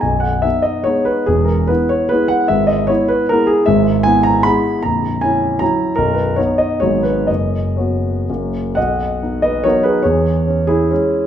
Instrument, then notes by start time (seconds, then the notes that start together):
grand piano
0.01 B0 B1 G#5
0.20 F#5
0.42 B3 D#4 E5
0.62 D#5
0.84 G#3 B3 D#4 C#5
1.05 B4
1.26 E1 E2 G#4
1.45 A#4
1.67 B3 E4 B4
1.89 C#5
2.09 G#3 B3 E4 B4
2.28 F#5
2.48 G#1 G#2 E5
2.67 D#5
2.87 B3 E4 C#5
3.08 B4
3.29 G#3 B3 E4 A#4
3.47 G#4
3.66 G#1 G#2 E5
4.03 B3 E4 G#5
4.23 A#5
4.43 G#3 B3 E4 B5
4.83 A#0 A#1 A#5
5.21 C#4 E4 G#5
5.59 F#3 C#4 E4 A#5
5.96 B0 B1 A#4
6.14 B4
6.36 B3 D#4 C#5
6.58 D#5
6.80 G#1 G#2 F#3 B3 D#4 C#5
7.03 B4
7.27 F#1 F#2 D#5
7.76 B3 F#4 C#5
8.29 F#1 F#2 F#3 A#3 F#4
8.75 B1 D#5 F#5
9.23 B3 D#4
9.42 B4 D#5
9.64 F#3 B3 D#4 A#4 C#5
9.83 G#4 B4
10.02 E2 G#4 C#5
10.47 C#4
10.67 E4 G#4
10.91 G#3 C#4